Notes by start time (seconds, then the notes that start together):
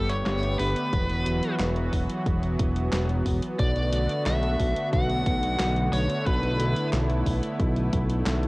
Already playing: G1 D3 A3 B3 G4 A4
0.09 C#5, closed hi-hat
0.26 G1, snare, clap, closed hi-hat
0.43 closed hi-hat
0.59 G1 B4, open hi-hat
0.76 closed hi-hat
0.93 E1 E3 F#3 F#4, kick, closed hi-hat
1.09 E1, closed hi-hat
1.26 E1, closed hi-hat
1.43 closed hi-hat
1.59 E1, snare, clap, closed hi-hat
1.76 closed hi-hat
1.93 E1, kick, open hi-hat
2.10 closed hi-hat
2.26 E1, kick, closed hi-hat
2.43 closed hi-hat
2.59 E1, kick, closed hi-hat
2.76 closed hi-hat
2.93 E1, snare, clap, closed hi-hat
3.10 closed hi-hat
3.26 E1, kick, open hi-hat
3.43 closed hi-hat
3.59 B1 D3 A3 F#4 D5, kick, closed hi-hat
3.76 B1, closed hi-hat
3.93 B1, closed hi-hat
4.10 closed hi-hat
4.26 B1 E5, snare, clap, closed hi-hat
4.43 closed hi-hat
4.60 B1, kick, open hi-hat
4.76 closed hi-hat
4.93 B1 F#5, kick, closed hi-hat
5.10 closed hi-hat
5.26 B1, kick, closed hi-hat
5.43 closed hi-hat
5.60 B1, snare, clap, closed hi-hat
5.76 closed hi-hat
5.93 B1 C#5, open hi-hat
6.10 closed hi-hat
6.26 B1 E4 B4, kick, closed hi-hat
6.43 B1, closed hi-hat
6.59 B1, closed hi-hat
6.76 closed hi-hat
6.93 B1, snare, clap, closed hi-hat
7.10 closed hi-hat
7.26 B1, kick, open hi-hat
7.43 closed hi-hat
7.60 B1, kick, closed hi-hat
7.76 closed hi-hat
7.93 B1, kick, closed hi-hat
8.10 closed hi-hat
8.26 B1, snare, clap, closed hi-hat
8.43 closed hi-hat